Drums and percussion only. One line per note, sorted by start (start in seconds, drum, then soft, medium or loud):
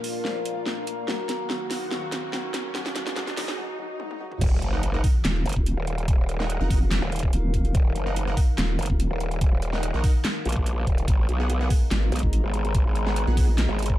0.04 open hi-hat loud
0.25 snare medium
0.46 closed hi-hat medium
0.66 snare medium
0.87 closed hi-hat medium
1.08 snare medium
1.29 snare medium
1.29 closed hi-hat medium
1.50 snare medium
1.71 snare medium
1.71 open hi-hat loud
1.91 snare medium
2.12 snare medium
2.12 closed hi-hat medium
2.33 snare medium
2.54 snare medium
2.54 closed hi-hat medium
2.75 snare medium
2.86 snare medium
2.96 snare medium
2.96 closed hi-hat medium
3.07 snare medium
3.16 snare loud
3.27 snare medium
3.37 snare loud
3.37 open hi-hat loud
3.48 snare medium
4.00 high tom medium
4.11 high tom medium
4.32 mid tom medium
4.41 kick loud
4.41 closed hi-hat medium
4.41 crash loud
4.62 closed hi-hat medium
4.83 closed hi-hat medium
5.04 kick loud
5.04 open hi-hat medium
5.25 snare loud
5.25 clap loud
5.25 closed hi-hat medium
5.46 closed hi-hat medium
5.49 closed hi-hat medium
5.53 kick medium
5.53 closed hi-hat medium
5.66 closed hi-hat medium
5.87 closed hi-hat medium
5.98 closed hi-hat soft
6.08 kick loud
6.08 closed hi-hat medium
6.29 closed hi-hat medium
6.40 snare soft
6.50 closed hi-hat medium
6.71 kick loud
6.71 open hi-hat medium
6.91 snare loud
6.91 clap medium
6.91 closed hi-hat medium
7.12 closed hi-hat medium
7.16 closed hi-hat medium
7.19 kick medium
7.19 closed hi-hat medium
7.33 closed hi-hat medium
7.54 kick medium
7.54 closed hi-hat medium
7.65 closed hi-hat soft
7.75 kick loud
7.75 closed hi-hat medium
7.96 closed hi-hat medium
8.16 closed hi-hat medium
8.37 kick loud
8.37 open hi-hat medium
8.58 snare loud
8.58 clap medium
8.58 closed hi-hat medium
8.79 closed hi-hat soft
8.82 closed hi-hat medium
8.86 closed hi-hat medium
8.90 kick medium
9.00 closed hi-hat medium
9.20 closed hi-hat medium
9.31 closed hi-hat soft
9.41 kick loud
9.41 closed hi-hat medium
9.62 closed hi-hat medium
9.73 snare soft
9.83 closed hi-hat medium
10.04 kick loud
10.04 open hi-hat medium
10.25 snare loud
10.25 clap medium
10.25 closed hi-hat medium
10.45 closed hi-hat soft
10.49 closed hi-hat medium
10.52 kick medium
10.52 closed hi-hat medium
10.66 closed hi-hat medium
10.87 kick medium
10.87 closed hi-hat medium
10.98 closed hi-hat soft
11.08 kick loud
11.08 closed hi-hat medium
11.29 closed hi-hat soft
11.50 closed hi-hat medium
11.70 kick loud
11.70 open hi-hat medium
11.91 snare loud
11.91 clap medium
11.91 closed hi-hat medium
12.12 closed hi-hat soft
12.16 closed hi-hat medium
12.19 closed hi-hat medium
12.23 kick medium
12.33 closed hi-hat medium
12.54 closed hi-hat medium
12.65 closed hi-hat soft
12.75 kick loud
12.75 closed hi-hat medium
12.95 closed hi-hat medium
13.06 snare soft
13.16 closed hi-hat medium
13.37 kick loud
13.37 open hi-hat loud
13.58 snare loud
13.58 clap medium
13.58 closed hi-hat medium
13.79 closed hi-hat medium
13.83 closed hi-hat medium
13.86 kick medium
13.86 closed hi-hat medium